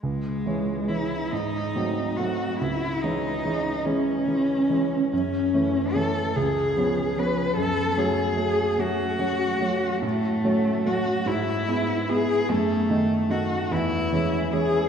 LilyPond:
<<
  \new Staff \with { instrumentName = "Cello" } { \time 6/8 \key cis \minor \tempo 4. = 48 gis4 e'8 dis'4 fis'8 | e'8 dis'4 cis'4. | cis'4 a'8 gis'4 b'8 | a'8 gis'4 fis'4. |
a4 fis'8 e'4 gis'8 | a4 fis'8 e'4 gis'8 | }
  \new Staff \with { instrumentName = "Grand piano" } { \clef bass \time 6/8 \key cis \minor cis,8 <e gis cis'>8 <e gis cis'>8 gis,8 <fis a bis>8 <fis a bis>8 | cis,8 <e gis cis'>8 <e gis cis'>8 <e gis cis'>8 <e gis cis'>8 <e gis cis'>8 | fis,8 <e a cis'>8 <e a cis'>8 cis,8 <eis b cis'>8 <eis b cis'>8 | fis,8 <fis a cis'>8 <fis a cis'>8 <fis a cis'>8 <fis a cis'>8 <fis a cis'>8 |
a,8 <fis a cis'>8 <fis a cis'>8 gis,8 <gis b e'>8 <gis b e'>8 | fis,8 <dis a dis'>8 <dis a dis'>8 e,8 <e gis cis'>8 <e gis cis'>8 | }
>>